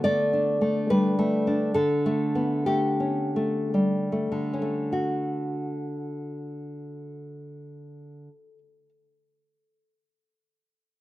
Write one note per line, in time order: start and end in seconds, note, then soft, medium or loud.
0.00 1.73 D3 soft
0.00 1.05 B3 soft
0.00 0.87 D5 medium
0.05 0.60 A3 soft
0.33 1.46 D4 soft
0.61 1.17 A3 soft
0.90 1.76 G3 soft
0.90 1.73 B4 medium
1.19 1.75 A3 soft
1.47 1.76 D4 soft
1.74 4.30 D3 medium
1.74 2.63 A4 medium
2.06 2.66 A3 soft
2.35 3.00 B3 soft
2.66 3.35 A3 soft
2.66 4.28 G4 medium
3.00 4.52 C#4 soft
3.36 4.11 A3 soft
3.74 4.93 G3 soft
4.12 4.61 A3 soft
4.32 8.28 D3 soft
4.53 4.93 C#4 soft
4.62 8.58 A3 soft
4.93 8.89 F#4 soft